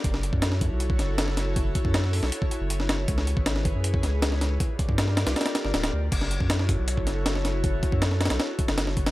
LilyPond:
<<
  \new Staff \with { instrumentName = "Analog synth pad" } { \time 4/4 \key fis \minor \tempo 4 = 158 << { <e' cis''>1~ | <e' cis''>1~ | <e' cis''>1 | <f' d''>1 |
<e' cis''>1~ | <e' cis''>1 | } \\ { <fis' a'>1~ | <fis' a'>1 | <gis' b'>1 | <g' bes'>1 |
<fis' a'>1~ | <fis' a'>1 | } >> }
  \new Staff \with { instrumentName = "Sub bass" } { \clef bass \time 4/4 \key fis \minor fis,,8. fis,4 b,,8. fis,,4.~ | fis,,8 r16 fis,4 b,,16 r8. fis,,4~ fis,,16 | cis,8. gis,,4 fis,8. cis,4. | r8. g,4 bis,,16 r8. g,,16 d,,8 d,8 |
fis,,8. fis,4 b,,8. fis,,4.~ | fis,,8 r16 fis,4 b,,16 r8. fis,,4~ fis,,16 | }
  \new DrumStaff \with { instrumentName = "Drums" } \drummode { \time 4/4 <hh bd>16 sn16 hh16 bd16 <hh sn>16 sn16 <hh bd>8 hh16 bd16 <hh sn>8 <hh sn>16 sn16 <hh sn>8 | <hh bd>8 <hh bd>16 bd16 <hh sn>16 sn16 hho16 sn16 hh16 bd16 hh8 hh16 sn16 <hh sn>8 | <hh bd>16 sn16 hh16 bd16 <hh sn>16 sn16 <hh bd>8 hh16 bd16 <hh sn>8 <hh sn>16 sn16 <hh sn>8 | <hh bd>8 <hh bd>16 bd16 <hh sn>16 sn16 <hh sn>16 <hh sn>16 <hh sn>32 <hh sn>32 <hh sn>16 <hh sn>16 sn16 <hh sn>16 <hh sn>8. |
<cymc hh bd>16 sn16 hh16 bd16 <hh sn>16 sn16 <hh bd>8 hh16 bd16 <hh sn>8 <hh sn>16 sn16 <hh sn>8 | <hh bd>8 <hh bd>16 bd16 <hh sn>16 sn16 <hh sn>32 <hh sn>32 <hh sn>16 <hh sn>8 <hh bd>16 <hh sn>16 <hh sn>16 sn16 <hh bd>16 <hh sn>16 | }
>>